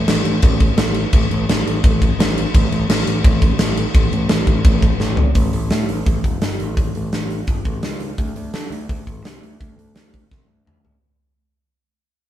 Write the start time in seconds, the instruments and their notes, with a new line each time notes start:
0.08 picked electric bass A1, snare, crash
0.25 picked electric bass A1, crash
0.42 picked electric bass A1, kick, crash
0.60 kick, crash
0.77 picked electric bass A1, snare, crash
0.94 crash
1.13 picked electric bass A1, kick, crash
1.31 picked electric bass A1, crash
1.49 picked electric bass A1, snare, crash
1.67 picked electric bass A1, crash
1.84 picked electric bass A1, kick, crash
2.02 kick, crash
2.19 picked electric bass A1, snare, crash
2.29 snare
2.38 crash
2.54 picked electric bass A1, kick, crash
2.71 picked electric bass A1, crash
2.89 picked electric bass A1, snare, crash
3.07 picked electric bass A1, crash
3.24 picked electric bass A1, kick, crash
3.42 kick, crash
3.58 picked electric bass A1, snare, crash
3.77 crash
3.95 picked electric bass A1, kick, crash
4.12 picked electric bass A1, crash
4.28 picked electric bass A1, snare, crash
4.47 picked electric bass A1, kick, crash
4.65 picked electric bass A1, kick, crash
4.82 kick, crash
5.00 picked electric bass A1, snare
5.17 floor tom
5.35 picked electric bass A1, kick, open hi-hat
5.53 picked electric bass A1, open hi-hat
5.70 picked electric bass A2, snare, open hi-hat
5.89 picked electric bass A1, open hi-hat
6.06 picked electric bass A1, kick, open hi-hat
6.24 picked electric bass E1, kick, open hi-hat
6.42 picked electric bass G1, snare, open hi-hat
6.60 picked electric bass A1, open hi-hat
6.77 picked electric bass A1, kick, open hi-hat
6.95 picked electric bass A1, open hi-hat
7.13 picked electric bass A1, snare, open hi-hat
7.30 open hi-hat
7.47 picked electric bass G1, kick, open hi-hat
7.65 picked electric bass A1, kick, open hi-hat
7.83 picked electric bass C#2, snare, open hi-hat
8.00 open hi-hat
8.18 picked electric bass D2, kick, open hi-hat
8.36 picked electric bass D2, open hi-hat
8.54 picked electric bass D3, snare, open hi-hat
8.70 picked electric bass D2, open hi-hat
8.89 picked electric bass D2, kick, open hi-hat
9.07 picked electric bass A1, kick, open hi-hat
9.24 picked electric bass C2, snare, open hi-hat
9.42 picked electric bass D2, open hi-hat
9.60 picked electric bass D2, kick, open hi-hat
9.77 picked electric bass D2, open hi-hat
9.95 picked electric bass D2, snare, open hi-hat
10.14 kick, open hi-hat
10.31 picked electric bass C2, kick, snare
10.47 picked electric bass D2
10.65 picked electric bass D2, mid tom
10.85 floor tom